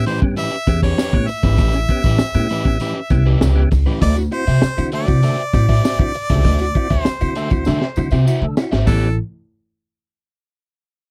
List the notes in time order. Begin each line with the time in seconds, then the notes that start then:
0.06 A2 E3 C#4 G4 B4 C5, closed hi-hat
0.22 G2 B3 C#4 G4, muted overdriven electric guitar stroke, kick
0.37 A2 E3 C#4 G4 B4 E5, closed hi-hat, tambourine
0.67 E2 B3 C#4 G4, muted overdriven electric guitar stroke, kick, snare, closed hi-hat, tambourine
0.83 C#4 G4 B4 C#5, kick, tambourine
0.98 C#4 G4 B4, snare, closed hi-hat, tambourine
1.13 A2 B3 C#4 G4, kick
1.28 E5, muted overdriven electric guitar stroke, open hi-hat, tambourine
1.43 G#1 A2 E3 C#4 G4 B4, kick, snare, closed hi-hat
1.58 A1 A2 E3 C#4 G4 B4, kick, closed hi-hat, tambourine
1.73 C#4 G4, muted overdriven electric guitar stroke, snare, tambourine
1.89 B3 C#4 G4, muted overdriven electric guitar stroke, kick, closed hi-hat
2.04 A1 C#4 G4 B4, kick, closed hi-hat
2.19 muted upright bass stroke, muted overdriven electric guitar stroke, snare, closed hi-hat, tambourine
2.34 A2 B3 C#4 G4, muted overdriven electric guitar stroke, tambourine
2.49 A2 E3 C#4 G4 B4, closed hi-hat
2.64 A1 B3 C#4 G4, muted overdriven electric guitar stroke, kick
2.80 A2 E3 C#4 G4 B4, closed hi-hat, tambourine
3.10 C2 B3 C#4 G4, muted overdriven electric guitar stroke, kick, snare, closed hi-hat, tambourine
3.25 C#4 G4 B4
3.41 C#2 C#4 G4 B4, snare, closed hi-hat, tambourine
3.55 B3 C#4 G4
3.71 C#2, muted overdriven electric guitar stroke, kick, snare, open hi-hat, tambourine
3.86 A2 E3 C#4 G4 B4, snare
4.01 D2 D3 A3 F#4 C5 D5 E5, kick, closed hi-hat, tambourine
4.16 E4 F#4, muted overdriven electric guitar stroke, snare, tambourine
4.31 C4 E4 F#4 C5, muted overdriven electric guitar stroke, closed hi-hat
4.47 C3 F#4 C5 E5, tambourine
4.62 muted overdriven electric guitar stroke, muted upright bass stroke, snare, closed hi-hat, tambourine
4.77 D3 C4 E4 F#4, muted overdriven electric guitar stroke, tambourine
4.92 D3 A3 F#4 C5 D5 E5, closed hi-hat
5.08 C3 C4 E4 F#4, muted overdriven electric guitar stroke, kick, tambourine
5.23 D3 A3 F#4 C5 E5, closed hi-hat, tambourine
5.54 A2 C4 E4 F#4, muted overdriven electric guitar stroke, kick, snare, closed hi-hat, tambourine
5.69 E4 F#4 C5 E5, kick
5.84 F#4 C5 E5, snare, closed hi-hat, tambourine
5.99 D3 C4 E4 F#4, kick
6.14 muted overdriven electric guitar stroke, open hi-hat, tambourine
6.29 C#2 D3 A3 F#4 C5 E5, kick, snare, tambourine
6.44 D2 D3 A3 F#4 C5 E5, kick, closed hi-hat, tambourine
6.58 E4 F#4, muted overdriven electric guitar stroke, snare, tambourine
6.75 C4 E4 F#4, muted overdriven electric guitar stroke, kick, closed hi-hat
6.90 D2 F#4 C5 E5, kick, closed hi-hat
7.02 C5, snare, closed hi-hat, tambourine
7.06 muted upright bass stroke, muted overdriven electric guitar stroke
7.21 D3 C4 E4 F#4, muted overdriven electric guitar stroke, tambourine
7.35 D3 A3 F#4 C5 E5, closed hi-hat
7.50 D2 C4 E4 F#4, muted overdriven electric guitar stroke, kick, tambourine
7.65 D3 A3 F#4 C5 E5, snare, tambourine
7.81 snare
7.96 D3 C4 E4 F#4, muted overdriven electric guitar stroke, tambourine
8.11 C3 E4 F#4 C5 E5, tambourine
8.27 E4 F#4 C5 E5, tambourine
8.42 D3 A3
8.57 E4 F#4, muted overdriven electric guitar stroke, snare, tambourine
8.72 G#1 F#4 C5 E5, snare, tambourine
8.87 A1 B3 C#4 G4 A4 B4, kick, tambourine